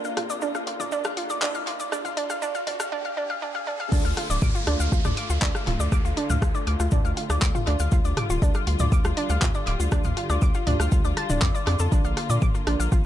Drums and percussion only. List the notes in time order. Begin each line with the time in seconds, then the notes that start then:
0.05 cabasa
0.17 cross-stick, mid tom, open hi-hat
0.30 cabasa
0.41 cabasa
0.55 cross-stick, cabasa
0.67 open hi-hat
0.80 mid tom, cabasa
0.91 cabasa
1.04 cross-stick, cabasa
1.17 open hi-hat
1.30 cabasa
1.41 cross-stick, clap, mid tom, cabasa
1.55 cabasa
1.67 open hi-hat
1.80 cabasa
1.92 cross-stick, cabasa
2.05 mid tom, cabasa
2.17 open hi-hat
2.30 cross-stick, cabasa
2.42 cabasa
2.55 cabasa
2.67 mid tom, open hi-hat
2.80 cross-stick, cabasa
3.92 kick, crash, cabasa
4.05 cabasa
4.17 cross-stick, open hi-hat
4.30 cabasa
4.42 kick, mid tom, cabasa
4.55 cabasa
4.67 cross-stick, open hi-hat
4.80 cabasa
4.92 kick, cabasa
5.04 cross-stick, mid tom, cabasa
5.17 open hi-hat
5.30 cabasa
5.42 kick, clap, cabasa
5.55 cross-stick, cabasa
5.67 mid tom, open hi-hat
5.80 cabasa
5.92 kick, cross-stick, cabasa
6.05 cabasa
6.17 open hi-hat
6.30 mid tom, cabasa
6.42 kick, cross-stick, cabasa
6.55 cabasa
6.67 open hi-hat
6.80 cross-stick, cabasa
6.91 kick, mid tom, cabasa
7.05 cabasa
7.17 open hi-hat
7.30 cross-stick, cabasa
7.42 kick, clap, cabasa
7.55 mid tom, cabasa
7.67 cross-stick, open hi-hat
7.79 cabasa
7.92 kick, cabasa
8.05 cabasa
8.17 cross-stick, mid tom, open hi-hat
8.30 cabasa
8.42 kick, cabasa
8.54 cross-stick, cabasa
8.67 open hi-hat
8.79 mid tom, cabasa
8.92 kick, cabasa
9.05 cross-stick, cabasa
9.17 open hi-hat
9.29 cabasa
9.42 kick, cross-stick, clap, mid tom, cabasa
9.54 cabasa
9.67 open hi-hat
9.80 cabasa
9.92 kick, cross-stick, cabasa
10.04 mid tom, cabasa
10.17 open hi-hat
10.30 cross-stick, cabasa
10.42 kick, cabasa
10.54 cabasa
10.67 mid tom, open hi-hat
10.80 cross-stick, cabasa
10.92 kick, cabasa
11.05 cabasa
11.17 cross-stick, open hi-hat
11.30 mid tom, cabasa
11.42 kick, clap, cabasa
11.55 cabasa
11.67 cross-stick, open hi-hat
11.79 cabasa
11.92 kick, cabasa
12.05 cabasa
12.17 cross-stick, open hi-hat
12.30 cabasa
12.42 kick, mid tom, cabasa
12.55 cabasa
12.67 cross-stick, open hi-hat
12.80 cabasa
12.92 kick, cabasa